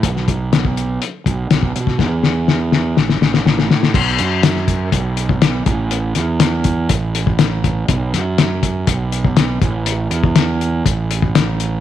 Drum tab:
CC |----------------|----------------|x---------------|----------------|
HH |x-x-x-x-x-x-x-x-|----------------|--x-x-x-x-x-x-x-|x-x-x-x-x-x-x-x-|
SD |-o--o-------o--o|o-o-o-o-oooooooo|----oo------o---|--o-o-------o---|
BD |o-o--o----o--o-o|o---------------|o-----o-o--o--o-|------o-o--o--o-|

CC |----------------|----------------|
HH |x-x-x-x-x-x-x-x-|x-x-x-x-x-x-x-x-|
SD |--o-o-------o---|----o-------o---|
BD |o-----o-o--o--o-|---o----o--o----|